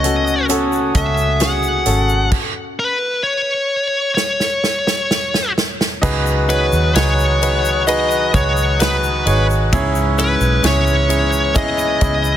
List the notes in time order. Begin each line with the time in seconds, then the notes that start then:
Already playing: C#2 C#3 A3 C#4 F#4 A4 B4 C#5 D#5 F#5 C#6
0.03 C#4 F#4 A4, closed hi-hat, shaker
0.27 shaker
0.49 C#4 F#4 A4 D#6, closed hi-hat, shaker
0.72 shaker
0.94 C#2 C#4 F#4 A4 E5, kick, closed hi-hat, shaker
1.18 shaker
1.40 C#4 F#4 G#4 F#5, snare, closed hi-hat, shaker
1.63 shaker
1.86 G#1 C#4 F#4 A4, closed hi-hat, shaker
2.09 shaker
2.32 kick, crash
2.79 B4
3.23 C#5
4.14 C#5, snare
4.40 snare
4.64 snare
4.87 snare
5.11 snare
5.34 snare
5.58 snare
5.81 snare
6.01 C#2 C#3 D#3 F#3 G#3 B3 D#4 F#4 G#4 B4, kick, crash, shaker
6.26 shaker
6.48 D#4 F#4 G#4 B4 C#5, ride, shaker
6.72 D#2, shaker
6.95 C#2 D#4 F#4 G#4 B4 C#5, snare, ride, shaker
7.19 shaker
7.41 D#4 F#4 G#4 B4, ride, shaker
7.65 shaker
7.87 D#4 F#4 G#4 B4 D#5, ride, shaker
8.11 shaker
8.33 C#2 D#4 F#4 G#4 C#5, kick, ride, shaker
8.57 shaker
8.79 D#4 F#4 G#4 B4, snare, ride, shaker
9.03 shaker
9.26 G#1 D#4 F#4 G#4 C#5, ride, shaker
9.50 shaker
9.73 C#2 G#2 E3 C#4 E4 G#4 C#5, kick, ride, shaker
9.95 shaker
10.18 C#4 E4 G#4 B4 C#5, ride, shaker
10.41 B1, shaker
10.63 C#2 C#4 E4 G#4 C#5, snare, ride, shaker
10.87 shaker
11.09 C#4 E4 G#4 C#5, ride, shaker
11.33 shaker
11.54 C#4 E4 G#4 D#5, kick, ride, shaker
11.78 shaker
12.01 C#2 C#4 E4 G#4 D#5, kick, ride, shaker
12.24 shaker